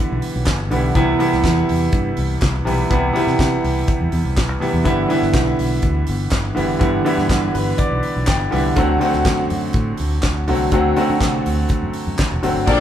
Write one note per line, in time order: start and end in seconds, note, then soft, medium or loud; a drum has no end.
0.00 0.71 D3 medium
0.00 0.71 E3 medium
0.00 0.71 G3 medium
0.00 0.72 B3 medium
0.00 0.72 E4 medium
0.12 0.20 B1 medium
0.22 open hi-hat medium
0.36 0.44 B1 medium
0.46 0.72 G1 medium
0.46 kick loud
0.46 snare loud
0.46 clap loud
0.46 closed hi-hat medium
0.71 0.90 B1 medium
0.71 0.91 D3 medium
0.71 0.91 E3 medium
0.71 0.91 G3 medium
0.71 0.92 B3 medium
0.71 0.92 E4 medium
0.71 open hi-hat medium
0.95 1.13 C2 medium
0.95 1.15 C3 medium
0.95 1.16 E3 medium
0.95 1.16 G3 medium
0.95 1.16 B3 medium
0.95 1.16 E4 loud
0.95 kick loud
0.95 closed hi-hat medium
1.19 2.00 C3 medium
1.19 2.00 E3 medium
1.19 2.01 G3 medium
1.19 2.01 B3 medium
1.19 2.01 E4 loud
1.19 open hi-hat medium
1.32 1.42 C2 medium
1.32 snare soft
1.44 1.62 E2 medium
1.44 kick loud
1.44 snare loud
1.44 clap medium
1.44 closed hi-hat medium
1.69 1.87 E2 medium
1.69 open hi-hat medium
1.92 2.11 G2 medium
1.92 kick loud
1.92 closed hi-hat medium
2.17 2.36 C2 medium
2.17 open hi-hat medium
2.41 2.60 C2 medium
2.41 kick loud
2.41 snare loud
2.41 clap medium
2.41 closed hi-hat medium
2.65 2.84 B1 medium
2.65 2.86 C3 medium
2.65 2.86 E3 medium
2.65 2.86 G3 medium
2.65 2.87 B3 medium
2.65 2.87 E4 medium
2.65 open hi-hat medium
2.90 3.09 C2 medium
2.90 3.11 C3 medium
2.90 3.11 E3 medium
2.90 3.11 G3 medium
2.90 3.11 B3 medium
2.90 3.11 E4 medium
2.90 kick loud
2.90 closed hi-hat medium
3.13 3.95 C3 medium
3.13 3.96 E3 medium
3.13 3.96 G3 medium
3.13 3.96 B3 medium
3.13 3.96 E4 loud
3.13 open hi-hat medium
3.27 3.36 C3 medium
3.27 snare soft
3.39 3.57 C3 medium
3.39 kick loud
3.39 snare loud
3.39 clap medium
3.39 closed hi-hat medium
3.64 3.82 C2 medium
3.64 open hi-hat medium
3.88 kick loud
3.88 closed hi-hat medium
4.00 4.09 E2 medium
4.12 4.22 E2 medium
4.12 open hi-hat medium
4.25 4.37 C2 medium
4.37 4.49 B1 medium
4.37 kick medium
4.37 snare loud
4.37 clap medium
4.37 closed hi-hat medium
4.49 4.58 C2 medium
4.60 4.81 C3 medium
4.60 4.81 E3 medium
4.60 4.81 G3 medium
4.60 4.82 B3 medium
4.60 4.82 E4 medium
4.60 open hi-hat medium
4.73 4.82 E2 medium
4.84 5.04 G1 medium
4.84 5.05 D3 medium
4.84 5.05 E3 medium
4.84 5.06 G3 medium
4.84 5.06 B3 medium
4.84 5.06 E4 loud
4.84 kick medium
4.84 closed hi-hat medium
5.08 5.90 D3 medium
5.08 5.90 E3 medium
5.08 5.91 G3 medium
5.08 5.91 B3 medium
5.08 5.91 E4 loud
5.08 open hi-hat medium
5.22 5.31 G1 medium
5.22 snare soft
5.34 5.52 B1 medium
5.34 kick loud
5.34 snare loud
5.34 clap medium
5.34 closed hi-hat medium
5.59 5.77 B1 medium
5.59 open hi-hat medium
5.82 6.01 D2 medium
5.82 kick loud
5.82 closed hi-hat medium
6.07 6.27 G1 medium
6.07 open hi-hat medium
6.31 6.50 G1 loud
6.31 kick loud
6.31 snare loud
6.31 clap medium
6.31 closed hi-hat medium
6.55 6.75 F#1 medium
6.55 6.76 D3 medium
6.55 6.76 E3 medium
6.55 6.76 G3 medium
6.55 6.76 B3 medium
6.55 6.77 E4 medium
6.55 open hi-hat medium
6.79 6.99 G1 loud
6.79 7.00 D3 medium
6.79 7.01 E3 medium
6.79 7.01 G3 medium
6.79 7.01 B3 medium
6.79 7.01 E4 medium
6.79 kick loud
6.79 closed hi-hat medium
7.05 7.86 D3 medium
7.05 7.86 E3 medium
7.05 7.87 G3 medium
7.05 7.87 B3 medium
7.05 7.87 E4 loud
7.05 open hi-hat medium
7.18 7.27 G2 medium
7.18 snare soft
7.29 7.48 G2 medium
7.29 kick loud
7.29 snare medium
7.29 clap medium
7.29 closed hi-hat medium
7.54 7.73 G1 loud
7.54 7.77 B4 medium
7.54 open hi-hat medium
7.78 8.24 D5 medium
7.78 kick loud
7.78 closed hi-hat medium
7.91 8.00 B1 medium
8.03 open hi-hat medium
8.16 8.25 B1 medium
8.27 8.46 G1 medium
8.27 8.73 G5 medium
8.27 kick loud
8.27 snare loud
8.27 clap loud
8.27 closed hi-hat medium
8.51 8.71 C2 medium
8.51 8.72 D3 medium
8.51 8.72 E3 medium
8.51 8.72 G3 medium
8.51 8.72 B3 medium
8.51 8.73 E4 medium
8.51 open hi-hat medium
8.76 8.95 D2 loud
8.76 8.97 D3 medium
8.76 8.97 F#3 medium
8.76 8.97 A3 medium
8.76 8.97 C4 medium
8.76 8.97 F#4 loud
8.76 kick loud
8.76 closed hi-hat medium
9.00 9.82 D3 medium
9.00 9.82 F#3 medium
9.00 9.82 A3 medium
9.00 9.82 C4 medium
9.00 9.83 F#4 loud
9.00 open hi-hat medium
9.13 9.23 D2 medium
9.13 snare soft
9.25 9.43 F#2 loud
9.25 kick loud
9.25 snare loud
9.25 clap medium
9.25 closed hi-hat medium
9.50 9.68 F#2 medium
9.50 open hi-hat medium
9.73 9.92 A2 medium
9.73 kick loud
9.73 closed hi-hat medium
9.97 10.17 D2 loud
9.97 open hi-hat medium
10.22 10.50 D2 medium
10.22 kick medium
10.22 snare loud
10.22 clap loud
10.22 closed hi-hat medium
10.48 10.66 C2 medium
10.48 10.68 D3 medium
10.48 10.68 F#3 medium
10.48 10.68 A3 medium
10.48 10.69 C4 medium
10.48 10.69 F#4 medium
10.48 open hi-hat medium
10.72 10.90 D2 loud
10.72 10.93 D3 medium
10.72 10.93 F#3 medium
10.72 10.93 A3 medium
10.72 10.93 C4 medium
10.72 10.93 F#4 medium
10.72 kick loud
10.72 closed hi-hat medium
10.96 11.78 D3 medium
10.96 11.78 F#3 medium
10.96 11.78 A3 medium
10.96 11.78 C4 medium
10.96 11.78 F#4 medium
10.96 open hi-hat medium
11.10 11.21 D3 medium
11.21 11.39 C3 medium
11.21 kick medium
11.21 snare loud
11.21 clap medium
11.21 closed hi-hat medium
11.46 11.64 D2 loud
11.46 open hi-hat medium
11.69 kick loud
11.69 closed hi-hat medium
11.83 11.91 F#2 medium
11.93 open hi-hat medium
12.07 12.16 F#2 medium
12.18 kick loud
12.18 snare loud
12.18 clap loud
12.18 closed hi-hat medium
12.32 12.40 E1 medium
12.43 12.52 F#1 medium
12.43 12.63 D3 medium
12.43 12.63 F#3 medium
12.43 12.64 A3 medium
12.43 12.64 C4 medium
12.43 12.64 F#4 medium
12.43 open hi-hat medium
12.55 12.64 G1 medium
12.66 12.80 A#1 medium
12.66 12.80 F3 medium
12.66 12.80 A#3 medium
12.66 12.80 C4 medium
12.66 12.80 D4 medium
12.66 12.80 A4 loud
12.66 12.80 D5 loud
12.66 kick loud
12.66 crash medium